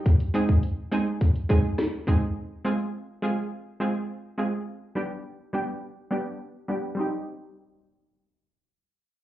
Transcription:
<<
  \new Staff \with { instrumentName = "Synth pluck" } { \time 4/4 \key c \minor \tempo 4 = 104 r8 <aes c' ees' aes'>8 r8 <aes c' ees' aes'>8 r8 <aes c' ees' aes'>8 r8 <aes c' ees' aes'>8 | r8 <aes c' f' aes'>8 r8 <aes c' f' aes'>8 r8 <aes c' f' aes'>8 r8 <aes c' f' aes'>8 | r8 <g b d' g'>8 r8 <g b d' g'>8 r8 <g b d' g'>8 r8 <g b d' g'>8 | <g c' ees' g'>1 | }
  \new DrumStaff \with { instrumentName = "Drums" } \drummode { \time 4/4 <hh bd>16 hh16 hh16 bd16 hh8 hh8 <hh bd>16 hh16 <hh bd>8 <hh ss sn>8 <hh bd>8 | r4 r4 r4 r4 | r4 r4 r4 r4 | r4 r4 r4 r4 | }
>>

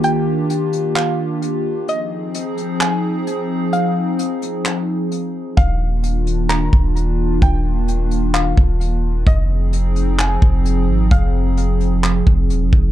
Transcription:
<<
  \new Staff \with { instrumentName = "Synth pluck" } { \time 4/4 \key f \dorian \tempo 4 = 130 g''4 r4 f''4 r4 | ees''4 r4 aes''4 r4 | f''4 r2. | f''4 r4 bes''4 r4 |
g''4 r4 f''4 r4 | ees''4 r4 aes''4 r4 | f''4 r2. | }
  \new Staff \with { instrumentName = "Analog synth pad" } { \time 4/4 \key f \dorian <ees bes d' f' g'>1 | <f c' ees' aes'>1~ | <f c' ees' aes'>1 | <ees bes d' f'>1~ |
<ees bes d' f'>1 | <f c' ees' aes'>1~ | <f c' ees' aes'>1 | }
  \new Staff \with { instrumentName = "808-style bass" } { \clef bass \time 4/4 \key f \dorian r1 | r1 | r1 | ees,,2~ ees,,8 ees,,4. |
ees,,2~ ees,,8 ees,,4. | f,,2~ f,,8 f,,4 aes,,8 | f,,2~ f,,8 f,,8 ees,,16 f,,16 f,,8 | }
  \new DrumStaff \with { instrumentName = "Drums" } \drummode { \time 4/4 hh4 hh8 hh8 <hc hh>4 hh4 | hh4 hh8 hh8 <hc hh>4 hh4 | hh4 hh8 hh8 <hc hh>4 hh4 | <hh bd>4 hh8 hh8 <hc hh>8 bd8 hh4 |
<hh bd>4 hh8 hh8 <hc hh>8 bd8 hh4 | <hh bd>4 hh8 hh8 <hc hh>8 bd8 hh4 | <hh bd>4 hh8 hh8 <hc hh>8 bd8 hh8 bd8 | }
>>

